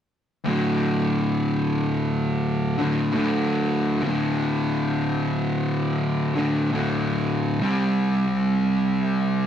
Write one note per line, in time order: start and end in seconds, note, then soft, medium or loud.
0.44 2.75 D2 medium
0.44 2.76 A2 medium
0.44 2.77 D3 medium
2.78 3.11 D2 medium
2.78 3.13 A2 medium
2.78 3.12 D3 medium
3.12 4.00 D2 medium
3.12 4.02 A2 medium
3.12 4.02 D3 medium
4.02 6.32 D2 medium
4.02 6.34 A2 medium
4.06 6.34 D3 loud
6.35 6.69 D2 medium
6.35 6.70 A2 medium
6.35 6.69 D3 medium
6.70 7.58 D2 medium
6.70 7.59 A2 medium
6.74 7.60 D3 medium
7.60 9.47 C3 medium
7.60 9.47 G3 medium
7.60 9.47 C4 loud